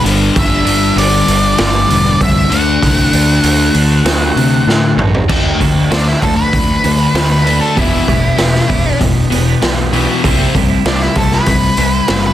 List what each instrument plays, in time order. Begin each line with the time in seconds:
0.03 picked electric bass G1, clean electric guitar G2, overdriven electric guitar D3, open hi-hat
0.07 overdriven electric guitar G3
0.35 picked electric bass G1, clean electric guitar G2, kick, open hi-hat
0.39 lead electric guitar E5
0.65 picked electric bass G1, clean electric guitar D4, open hi-hat
0.96 picked electric bass G1, clean electric guitar B3, lead electric guitar D5, open hi-hat
1.27 picked electric bass G1, clean electric guitar D4, open hi-hat
1.58 picked electric bass G1, clean electric guitar G3, lead electric guitar D5, snare, open hi-hat
1.90 picked electric bass E1, clean electric guitar B3, open hi-hat
2.20 picked electric bass C2, clean electric guitar D3, lead electric guitar E5, kick, open hi-hat
2.50 picked electric bass D2, clean electric guitar D3, overdriven electric guitar A3 D4, lead electric guitar F#5, open hi-hat
2.82 picked electric bass C2, clean electric guitar D3, kick, open hi-hat
3.13 picked electric bass D2, clean electric guitar D4, open hi-hat
3.43 picked electric bass D2, clean electric guitar A3, open hi-hat
3.74 picked electric bass D2, clean electric guitar D4, open hi-hat
4.05 picked electric bass D2, clean electric guitar F#3, snare, open hi-hat
4.36 picked electric bass C3, clean electric guitar A3, open hi-hat
4.67 picked electric bass A2, clean electric guitar D3, snare
4.97 picked electric bass A1, clean electric guitar F#3, mid tom
5.14 floor tom
5.29 picked electric bass D2, clean electric guitar D3 F#3 A3 D4, kick, crash
5.59 picked electric bass D2, clean electric guitar D3 F#3 A3 D4, kick, open hi-hat
5.75 clean electric guitar F#3 A3 D4
5.90 picked electric bass D2, clean electric guitar D3 F#3 A3 D4, lead electric guitar D4, snare, open hi-hat
6.05 clean electric guitar F#3 A3 D4, lead electric guitar E4, snare
6.20 picked electric bass D2, clean electric guitar D3 F#3 A3, lead electric guitar A4, kick, open hi-hat
6.24 clean electric guitar D4
6.36 clean electric guitar F#3 A3 D4, lead electric guitar B4
6.53 picked electric bass D2, overdriven electric guitar D3 A3, kick, open hi-hat
6.82 picked electric bass D2, clean electric guitar D3 F#3 A3 D4, open hi-hat
6.99 clean electric guitar F#3 A3 D4
7.14 picked electric bass D2, clean electric guitar D3 F#3 A3 D4, snare, open hi-hat
7.32 lead electric guitar B4
7.44 clean electric guitar D3 F#3 A3 D4, open hi-hat
7.60 clean electric guitar F#3 A3 D4, lead electric guitar A4
7.74 picked electric bass E1, overdriven electric guitar E2 B2, clean electric guitar E3 B3 D4 G4, lead electric guitar E4, kick, open hi-hat
8.06 picked electric bass E1, overdriven electric guitar E2 B2, clean electric guitar E3 B3 D4 G4, kick, open hi-hat
8.22 clean electric guitar B3 D4 G4
8.37 picked electric bass E1, overdriven electric guitar E2 B2, clean electric guitar E3 B3 D4 G4, snare, open hi-hat
8.52 clean electric guitar B3 D4 G4, snare
8.68 picked electric bass E1, overdriven electric guitar E2 B2, clean electric guitar E3 B3 D4 G4, kick, open hi-hat
8.84 clean electric guitar B3 D4 G4
8.99 picked electric bass E1, overdriven electric guitar E2 B2, kick, open hi-hat
9.30 picked electric bass E1, overdriven electric guitar E2 B2, clean electric guitar E3 B3 D4 G4, open hi-hat
9.45 clean electric guitar B3 D4 G4
9.61 picked electric bass B1, overdriven electric guitar E2 B2, clean electric guitar E3 B3 D4 G4, snare, open hi-hat
9.92 overdriven electric guitar E2 B2, clean electric guitar E3 B3 D4 G4, open hi-hat
10.08 clean electric guitar B3 D4 G4
10.24 picked electric bass C2, clean electric guitar C3 G3 C4 E4, kick, open hi-hat
10.54 picked electric bass C2, clean electric guitar C3 G3 C4 E4, kick, open hi-hat
10.70 clean electric guitar G3 C4 E4
10.85 picked electric bass C2, clean electric guitar C3 G3 C4 E4, lead electric guitar D4, snare, open hi-hat
11.01 clean electric guitar G3 C4 E4, lead electric guitar E4, snare
11.15 picked electric bass C2, clean electric guitar C3 G3 C4, lead electric guitar A4, kick, open hi-hat
11.20 clean electric guitar E4
11.32 clean electric guitar G3 C4 E4, lead electric guitar B4, snare
11.46 picked electric bass C2, overdriven electric guitar C3 G3, kick, open hi-hat
11.77 picked electric bass C2, clean electric guitar C3 G3 C4, open hi-hat
11.82 clean electric guitar E4
11.93 clean electric guitar G3 C4 E4
12.07 picked electric bass F#1, clean electric guitar C3 G3 C4 E4, snare, open hi-hat
12.27 lead electric guitar B4